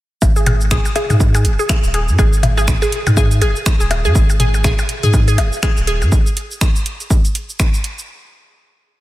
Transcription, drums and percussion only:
0.22 kick, percussion blips, shaker
0.36 shaker
0.46 closed hi-hat, mid tom, percussion blips
0.61 shaker
0.71 finger snap, kick, mid tom, shaker
0.85 percussion blips, shaker
0.96 closed hi-hat, percussion blips
1.10 closed hi-hat, mid tom, percussion blips, shaker
1.20 kick, shaker
1.35 closed hi-hat, percussion blips, shaker
1.45 closed hi-hat
1.59 shaker
1.69 finger snap, kick, percussion blips, shaker
1.84 shaker
1.94 closed hi-hat, percussion blips
2.08 shaker
2.19 kick, percussion blips, shaker
2.33 shaker
2.43 closed hi-hat, mid tom, percussion blips
2.57 percussion blips, shaker
2.68 finger snap, kick, mid tom, shaker
2.82 percussion blips, shaker
2.92 closed hi-hat
3.07 closed hi-hat, mid tom, percussion blips, shaker
3.17 kick, percussion blips, shaker
3.31 closed hi-hat, shaker
3.42 closed hi-hat, percussion blips
3.56 shaker
3.66 finger snap, kick, percussion blips, shaker
3.81 shaker
3.91 closed hi-hat, percussion blips
4.05 shaker
4.15 kick, shaker
4.30 percussion blips, shaker
4.40 closed hi-hat, mid tom
4.54 percussion blips, shaker
4.64 finger snap, kick, mid tom, percussion blips, shaker
4.79 percussion blips, shaker
4.89 closed hi-hat
5.03 closed hi-hat, mid tom, shaker
5.13 kick, percussion blips, shaker
5.28 closed hi-hat, shaker
5.38 closed hi-hat, percussion blips
5.53 shaker
5.63 finger snap, kick, percussion blips, shaker
5.77 shaker
5.87 closed hi-hat
6.02 percussion blips, shaker
6.12 kick, shaker
6.26 shaker
6.37 closed hi-hat
6.51 shaker
6.61 finger snap, kick, shaker
6.76 shaker
6.86 closed hi-hat
7.00 closed hi-hat, shaker
7.10 kick, shaker
7.25 closed hi-hat, shaker
7.35 closed hi-hat
7.49 shaker
7.60 finger snap, kick, shaker
7.74 shaker
7.84 closed hi-hat
7.99 shaker

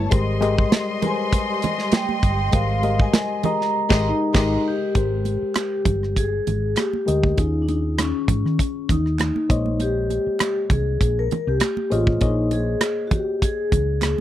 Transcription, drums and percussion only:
0.11 kick, closed hi-hat, muted conga
0.42 closed hi-hat, muted conga
0.58 kick
0.72 snare, closed hi-hat, high conga
1.02 closed hi-hat, low conga
1.33 kick, closed hi-hat, muted conga
1.62 closed hi-hat, muted conga, low conga
1.78 snare
1.92 snare, closed hi-hat, high conga
2.09 high conga
2.23 kick, closed hi-hat
2.52 kick, closed hi-hat, muted conga
2.83 closed hi-hat, muted conga
3.00 kick
3.14 snare, closed hi-hat, high conga
3.43 closed hi-hat, low conga
3.61 snare
3.90 kick, snare, crash
4.34 kick, snare, crash
4.95 kick, closed hi-hat, muted conga
5.25 closed hi-hat, muted conga
5.55 cross-stick, clap, closed hi-hat, high conga
5.85 kick, closed hi-hat, low conga
6.03 cross-stick
6.16 kick, closed hi-hat, muted conga
6.47 closed hi-hat, muted conga, low conga
6.76 cross-stick, clap, closed hi-hat, high conga
6.93 high conga
7.08 closed hi-hat
7.23 kick, high conga
7.38 kick, closed hi-hat, muted conga
7.68 closed hi-hat, muted conga
7.99 cross-stick, clap, closed hi-hat, high conga
8.28 kick, closed hi-hat, low conga
8.46 cross-stick
8.59 kick, closed hi-hat
8.89 kick, closed hi-hat, muted conga, low conga
9.06 cross-stick
9.19 cross-stick, clap, closed hi-hat, high conga
9.36 high conga
9.50 kick, closed hi-hat
9.66 high conga
9.80 closed hi-hat, muted conga
10.10 closed hi-hat, muted conga
10.40 cross-stick, clap, closed hi-hat, high conga
10.70 kick, closed hi-hat, low conga
11.01 kick, closed hi-hat, muted conga
11.31 closed hi-hat, muted conga, low conga
11.60 cross-stick, clap, closed hi-hat, high conga
11.77 high conga
11.92 closed hi-hat
12.07 kick, high conga
12.21 kick, closed hi-hat, muted conga
12.51 closed hi-hat, muted conga
12.81 cross-stick, clap, closed hi-hat, high conga
13.11 kick, closed hi-hat, low conga
13.42 kick, closed hi-hat, muted conga
13.72 kick, closed hi-hat, muted conga, low conga
14.02 cross-stick, clap, closed hi-hat, high conga

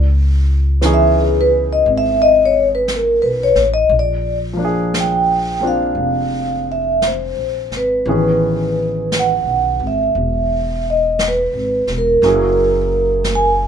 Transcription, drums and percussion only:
0.82 brush sweep, snare, hi-hat pedal
1.85 brush sweep
2.88 brush sweep, snare, hi-hat pedal
3.56 snare
3.91 brush sweep
4.94 brush sweep, snare, hi-hat pedal
5.98 brush sweep
7.02 brush sweep, snare, hi-hat pedal
7.72 snare
8.06 brush sweep
9.12 brush sweep, snare, hi-hat pedal
10.16 brush sweep
11.19 brush sweep, snare, hi-hat pedal
11.87 snare
12.23 brush sweep, snare
13.24 brush sweep, snare, hi-hat pedal

